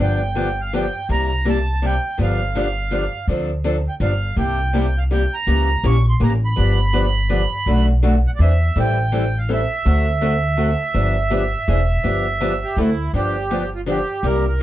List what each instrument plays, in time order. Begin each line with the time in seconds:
0.00 upright bass G1, steel-string acoustic guitar D3 F3 B3 D4 G4, accordion G5
0.35 steel-string acoustic guitar D3 F3 B3 D4 G4
0.61 accordion F5
0.73 steel-string acoustic guitar D3 F3 B3 D4 G4, accordion G5
1.09 upright bass C2, steel-string acoustic guitar C3 G3 A#3 E4 G4, accordion A#5
1.45 steel-string acoustic guitar C3 G3 A#3 E4 G4
1.49 accordion A5
1.82 steel-string acoustic guitar C3 G3 A#3 E4 G4, accordion G5
2.18 upright bass G1, steel-string acoustic guitar D3 F3 B3 D4 G4
2.23 accordion F5
2.55 steel-string acoustic guitar D3 F3 B3 D4 G4
2.91 steel-string acoustic guitar D3 F3 B3 D4 G4
3.27 upright bass D2, steel-string acoustic guitar D3 F3 C4 D4 A4
3.64 steel-string acoustic guitar D3 F3 C4 D4 A4
3.89 accordion G5
4.00 upright bass G1, steel-string acoustic guitar D3 F3 B3 D4 G4, accordion F5
4.36 upright bass C2, steel-string acoustic guitar C3 G3 A#3 E4 G4, accordion G5
4.73 steel-string acoustic guitar C3 G3 A#3 E4 G4
4.98 accordion F5
5.11 steel-string acoustic guitar C3 G3 A#3 E4 G4, accordion G5
5.34 accordion A#5
5.47 upright bass C#2, steel-string acoustic guitar C#3 E3 A#3 C#4 G4
5.84 upright bass A#1, steel-string acoustic guitar C#3 E3 A#3 C#4 G4, accordion C#6
6.09 accordion C6
6.20 upright bass A1, steel-string acoustic guitar C#3 E3 A#3 C#4 G4, accordion A#5
6.45 accordion B5
6.56 upright bass G1, steel-string acoustic guitar D3 F3 B3 D4 G4
6.93 steel-string acoustic guitar D3 F3 B3 D4 G4
7.29 steel-string acoustic guitar D3 F3 B3 D4 G4
7.66 upright bass B1, steel-string acoustic guitar B2 F#3 A3 D4 F#4
8.03 steel-string acoustic guitar B2 F#3 A3 D4 F#4
8.27 accordion F#5
8.36 upright bass E2, accordion D5
8.40 steel-string acoustic guitar E3 C4 D4 G#4, accordion E5
8.76 upright bass A1, steel-string acoustic guitar E3 G3 C4 E4 A4
8.80 accordion G5
9.12 steel-string acoustic guitar E3 G3 C4 E4 A4
9.39 accordion F5
9.49 steel-string acoustic guitar E3 G3 C4 E4 A4
9.53 accordion E5
9.85 upright bass D2, steel-string acoustic guitar D3 A3 C4 F#4 A4
10.21 steel-string acoustic guitar D3 A3 C4 F#4 A4
10.57 steel-string acoustic guitar D3 A3 C4 F#4 A4
10.94 upright bass G1, steel-string acoustic guitar D3 F3 B3 D4 G4
11.30 steel-string acoustic guitar D3 F3 B3 D4 G4
11.68 upright bass E1, steel-string acoustic guitar E3 C4 D4 G#4
12.03 upright bass G1, steel-string acoustic guitar D3 F3 B3 D4 G4
12.40 steel-string acoustic guitar D3 F3 B3 D4 G4
12.64 accordion G4
12.77 upright bass D2, steel-string acoustic guitar D3 A3 C4 F#4 A4, accordion E4
13.13 upright bass G1, steel-string acoustic guitar D3 F3 B3 D4 G4, accordion G4
13.50 steel-string acoustic guitar D3 F3 B3 D4 G4
13.75 accordion F4
13.86 steel-string acoustic guitar D3 F3 B3 D4 G4, accordion G4
14.23 upright bass C2, steel-string acoustic guitar C3 G3 A#3 E4 G4, accordion A#4
14.48 accordion A#4